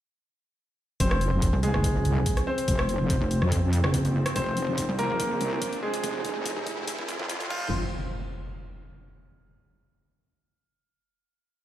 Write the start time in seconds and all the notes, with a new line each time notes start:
1.00 F1 C3 F3 C4 C5, kick, closed hi-hat, riser
1.11 cross-stick
1.21 closed hi-hat
1.32 F1
1.42 kick, closed hi-hat
1.53 C2
1.63 G#3 G#4, closed hi-hat
1.74 F#1, cross-stick
1.84 kick, closed hi-hat
2.05 C2, closed hi-hat
2.26 kick, closed hi-hat
2.37 cross-stick, closed hi-hat
2.47 C4 C5
2.58 closed hi-hat
2.68 F1, kick, closed hi-hat
2.79 cross-stick
2.89 closed hi-hat
3.00 F1
3.10 kick, closed hi-hat
3.21 F1
3.31 closed hi-hat
3.42 F2, cross-stick
3.52 kick, closed hi-hat
3.73 closed hi-hat
3.84 F#1, cross-stick
3.94 kick, closed hi-hat
4.05 closed hi-hat
4.26 cross-stick, closed hi-hat
4.36 F1 C4 C5, kick, closed hi-hat
4.57 closed hi-hat
4.68 F1
4.78 kick, closed hi-hat
4.89 C2
4.99 A#3 A#4, closed hi-hat
5.10 F#1
5.20 kick, closed hi-hat
5.41 C2, closed hi-hat
5.62 kick, closed hi-hat
5.73 closed hi-hat
5.83 G#3 G#4
5.94 closed hi-hat
6.04 F1, kick, closed hi-hat
6.25 kick, closed hi-hat
6.36 F1
6.46 kick, closed hi-hat
6.57 F1
6.67 kick, closed hi-hat
6.78 F1
6.87 kick, closed hi-hat
6.98 kick
7.08 kick, closed hi-hat
7.19 F2, kick
7.29 kick, closed hi-hat
7.40 kick, closed hi-hat
7.50 F1 F3 C4 F4 C5, kick, crash, impact